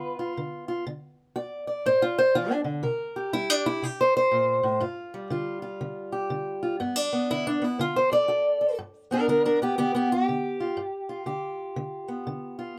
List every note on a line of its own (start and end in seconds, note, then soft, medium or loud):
0.00 0.32 D3 medium
0.00 0.84 B3 soft
0.00 0.18 F4 soft
0.00 0.37 B4 loud
0.19 0.67 F4 soft
0.37 0.83 D3 medium
0.68 0.84 F4 soft
0.87 1.32 D3 medium
1.36 1.81 F#4 medium
1.36 1.66 D5 medium
1.67 2.82 D5 medium
1.86 2.31 A2 medium
1.86 2.02 C5 loud
2.02 2.18 F4 medium
2.18 2.35 C5 loud
2.35 2.51 E3 medium
2.35 2.51 F4 loud
2.51 2.64 D4 loud
2.64 2.83 D3 medium
2.83 3.29 C3 medium
2.83 3.33 A#4 medium
3.16 3.83 G4 soft
3.33 3.50 G3 medium
3.33 3.50 E4 loud
3.50 3.66 D4 medium
3.66 3.83 E4 loud
3.82 4.28 C3 medium
3.82 4.00 G4 loud
4.01 4.15 C5 medium
4.17 4.82 C5 loud
4.31 4.63 A#2 medium
4.63 4.82 A2 medium
4.80 5.27 G2 medium
4.80 5.30 F4 medium
5.14 7.12 G3 medium
5.30 5.77 D3 medium
5.30 5.61 F4 medium
5.62 6.61 F4 medium
5.81 6.27 D3 medium
6.12 6.78 G4 soft
6.30 6.76 D3 medium
6.63 6.78 F4 medium
6.80 7.26 G2 medium
6.80 6.96 B3 medium
6.96 7.46 D4 medium
7.13 7.60 B3 medium
7.31 7.76 D3 medium
7.31 7.47 E4 loud
7.47 7.63 D4 medium
7.62 7.77 B3 medium
7.62 7.80 E4 loud
7.79 8.25 D3 medium
7.79 7.96 F4 loud
7.96 8.12 C5 medium
8.12 8.28 A4 soft
8.12 8.79 D5 loud
8.28 8.74 F#4 medium
8.28 8.60 A4 medium
8.61 8.77 A4 soft
8.79 9.25 G2 medium
9.11 9.62 B3 soft
9.11 9.28 D4 medium
9.11 9.28 A#4 medium
9.28 9.74 D3 medium
9.28 9.44 D4 medium
9.28 9.45 A#4 medium
9.45 9.62 D4 medium
9.45 9.62 A#4 medium
9.62 9.77 B3 medium
9.62 9.77 G4 medium
9.78 10.25 D3 medium
9.78 9.93 B3 medium
9.78 9.95 G4 medium
9.95 10.11 B3 medium
9.95 10.11 G4 medium
10.12 11.25 G4 medium
10.29 10.74 D3 medium
10.60 10.80 F4 soft
10.77 11.23 G2 medium
11.09 12.58 F4 soft
11.26 11.73 D3 medium
11.26 12.79 G4 soft
11.76 12.23 D3 medium
12.08 12.79 B3 soft
12.27 12.73 D3 medium
12.59 12.79 F4 soft